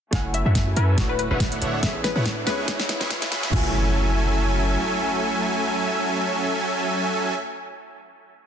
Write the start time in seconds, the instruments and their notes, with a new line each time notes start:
0.11 808-style bass F#1, string section F#3 A3 E4 G#5, supersaw synth F#3 C#4 A4 E5 G#5, felt piano A3 C#4 E4 G#5, harp E4, synth pluck F#5, kick, snare, closed hi-hat, riser
0.34 harp A4, synth pluck E5, closed hi-hat
0.45 808-style bass F#2, supersaw synth F#3 C#4 A4 E5 F#5, harp G#4, synth pluck E5
0.55 kick, snare, closed hi-hat
0.67 harp F#4
0.76 808-style bass F#2, supersaw synth F#3 C#4 A4 E5 G#5, harp E4, synth pluck B4, closed hi-hat
0.96 808-style bass D1, supersaw synth D3 D4 C#5 E5, string section D3 A3 F#4, felt piano A3 E4 F#4, harp D5, kick, snare, closed hi-hat
1.09 synth pluck B4, harp C#5
1.19 synth pluck B4, closed hi-hat
1.31 808-style bass D1, supersaw synth D3 D4 C#5 E5 F#5, harp A4, synth pluck B4
1.40 kick, snare, closed hi-hat
1.52 closed hi-hat
1.62 808-style bass D1, supersaw synth D3 D4 C#5 E5 F#5, harp D5, closed hi-hat
1.73 harp C#5
1.81 808-style bass A1, string section G#3, felt piano B3 C#4 E4, supersaw synth E4 B4, synth pluck E5, kick, snare, closed hi-hat
1.85 felt piano G#4
1.95 harp G#4
2.04 harp E4, synth pluck B4, snare, closed hi-hat
2.16 808-style bass A2, supersaw synth A3 E4 B4 C#5 F#5
2.26 harp C#5, kick, snare, closed hi-hat
2.37 harp A4
2.45 808-style bass C#2, string section C#3 B3 E4, felt piano B3 C#4 E4 G#4, supersaw synth C#4 G#4 B4 E5 C#6, synth pluck B4, snare, closed hi-hat
2.58 harp G#4
2.68 808-style bass C#2, supersaw synth C#4 G#4 B4 E5 C#6, harp E4, kick, snare, closed hi-hat
2.80 snare
2.89 harp C#5, snare, closed hi-hat
3.00 808-style bass C#2, supersaw synth C#4 G#4 B4 E5 C#6, harp B4, snare
3.10 kick, snare, closed hi-hat
3.22 harp G#4, snare, closed hi-hat
3.31 808-style bass C#2, supersaw synth C#4 G#4 B4 E5 B5, harp E4, snare, closed hi-hat
3.43 snare
3.50 808-style bass F#1, string section F#3 A3 E4 G#5, supersaw synth F#3 C#4 A4 E5 G#5, felt piano A3 C#4, harp E4, kick, crash, impact
3.54 felt piano E4 G#5